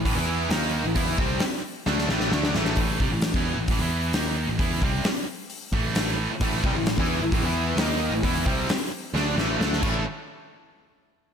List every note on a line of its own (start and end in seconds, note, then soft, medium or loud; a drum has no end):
0.05 0.15 A1 medium
0.05 0.15 A2 loud
0.05 0.14 E3 loud
0.05 kick loud
0.05 open hi-hat medium
0.15 0.48 E2 loud
0.15 0.50 E3 medium
0.15 0.50 B3 loud
0.15 0.50 E4 loud
0.49 0.82 D#2 loud
0.49 0.84 D#3 medium
0.49 0.84 A#3 medium
0.49 0.85 D#4 loud
0.49 snare loud
0.49 open hi-hat medium
0.84 0.95 A1 medium
0.84 0.95 A2 medium
0.84 0.95 E3 medium
0.95 1.17 E2 medium
0.95 1.18 E3 medium
0.95 1.19 B3 medium
0.95 1.18 E4 loud
0.95 kick loud
0.95 open hi-hat medium
1.18 1.40 C2 medium
1.18 1.41 C3 loud
1.18 1.42 G3 loud
1.18 1.42 C4 loud
1.18 kick loud
1.40 muted distorted electric guitar stroke medium
1.40 snare loud
1.40 open hi-hat medium
1.86 2.08 D2 medium
1.86 2.09 D3 medium
1.86 2.09 A3 loud
1.86 2.10 D4 loud
1.86 snare medium
1.98 snare medium
2.09 2.31 A1 medium
2.09 2.32 A2 loud
2.09 2.32 E3 loud
2.09 2.32 A3 loud
2.09 snare medium
2.20 snare medium
2.32 2.54 D2 loud
2.32 2.55 D3 medium
2.32 2.55 A3 loud
2.32 2.55 D4 loud
2.32 snare medium
2.43 snare medium
2.54 2.76 A1 medium
2.54 2.78 A2 loud
2.54 2.78 E3 medium
2.54 2.79 A3 loud
2.54 snare loud
2.65 snare medium
2.75 2.99 A1 loud
2.75 3.01 E3 medium
2.75 kick loud
2.75 open hi-hat medium
2.79 3.01 A2 medium
2.79 3.02 A3 loud
3.00 3.09 C2 medium
3.00 3.12 C3 loud
3.00 3.12 G3 loud
3.00 kick loud
3.10 3.32 A1 medium
3.10 3.31 A2 medium
3.10 3.31 E3 medium
3.21 snare loud
3.21 open hi-hat medium
3.34 3.55 E2 loud
3.34 3.58 E3 loud
3.34 3.58 B3 medium
3.34 3.58 E4 loud
3.34 kick loud
3.56 3.67 A1 medium
3.56 3.70 A2 medium
3.60 3.70 E3 medium
3.68 3.79 A1 loud
3.68 3.81 A2 medium
3.68 3.80 E3 loud
3.68 kick loud
3.68 open hi-hat medium
3.79 4.12 E2 loud
3.79 4.14 E3 loud
3.79 4.14 B3 loud
3.79 4.15 E4 loud
4.13 4.46 D#2 loud
4.13 4.48 D#3 medium
4.13 4.48 A#3 loud
4.13 4.48 D#4 loud
4.13 snare loud
4.13 open hi-hat medium
4.48 4.57 A1 medium
4.48 4.59 A2 medium
4.48 4.58 E3 medium
4.58 4.80 E2 medium
4.58 4.82 E3 medium
4.58 4.82 B3 medium
4.58 4.82 E4 loud
4.58 kick loud
4.58 open hi-hat medium
4.82 5.03 C2 loud
4.82 5.05 C3 loud
4.82 5.06 G3 loud
4.82 5.06 C4 loud
4.82 kick loud
5.04 muted distorted electric guitar stroke medium
5.04 snare loud
5.04 open hi-hat medium
5.50 open hi-hat medium
5.72 6.26 A1 medium
5.72 6.30 A2 medium
5.72 6.30 E3 loud
5.72 6.31 A3 loud
5.72 kick loud
5.95 snare loud
5.95 open hi-hat medium
6.31 muted picked electric bass stroke soft
6.31 muted distorted electric guitar stroke medium
6.40 6.62 A1 medium
6.40 6.64 A2 loud
6.40 6.64 E3 medium
6.40 6.65 A3 loud
6.40 kick loud
6.40 open hi-hat medium
6.64 6.75 C2 loud
6.64 6.76 C3 loud
6.64 6.76 G3 loud
6.64 kick loud
6.75 6.97 A1 medium
6.75 6.94 A2 medium
6.75 6.95 E3 medium
6.86 snare loud
6.86 open hi-hat medium
6.97 7.19 E2 loud
6.97 7.20 E3 loud
6.97 7.21 B3 loud
6.97 7.22 E4 loud
6.97 kick loud
7.21 7.31 A1 medium
7.21 7.33 A2 medium
7.21 7.33 E3 medium
7.31 7.41 A1 medium
7.31 7.44 A2 loud
7.31 7.43 E3 loud
7.31 kick loud
7.31 open hi-hat medium
7.42 7.75 E2 loud
7.42 7.78 E3 medium
7.42 7.78 B3 loud
7.42 7.78 E4 loud
7.76 8.09 D#2 loud
7.76 8.12 D#3 loud
7.76 8.13 A#3 medium
7.76 8.13 D#4 loud
7.76 snare loud
7.76 open hi-hat medium
8.10 8.22 A1 medium
8.10 8.23 A2 medium
8.10 8.22 E3 medium
8.23 8.45 E2 loud
8.23 8.45 E3 medium
8.23 8.46 B3 medium
8.23 8.46 E4 loud
8.23 kick loud
8.23 open hi-hat medium
8.46 8.67 C2 loud
8.46 8.69 C3 loud
8.46 8.69 G3 loud
8.46 8.69 C4 loud
8.46 kick loud
8.69 muted distorted electric guitar stroke medium
8.69 snare loud
8.69 open hi-hat medium
9.14 9.36 D2 medium
9.14 9.36 D3 medium
9.14 9.36 A3 medium
9.14 9.37 D4 loud
9.14 snare medium
9.36 9.58 A1 loud
9.36 9.57 A2 loud
9.36 9.57 E3 loud
9.36 9.57 A3 loud
9.36 snare medium
9.57 9.81 D2 loud
9.57 9.80 D3 medium
9.57 9.81 A3 loud
9.57 9.82 D4 loud
9.57 snare loud
9.73 snare medium
9.80 10.05 A1 medium
9.80 10.00 A2 medium
9.80 10.01 E3 medium
9.80 10.01 A3 loud
9.80 10.02 C#4 loud
9.80 10.02 E4 loud
9.80 kick loud
9.80 crash medium
9.85 10.02 A4 loud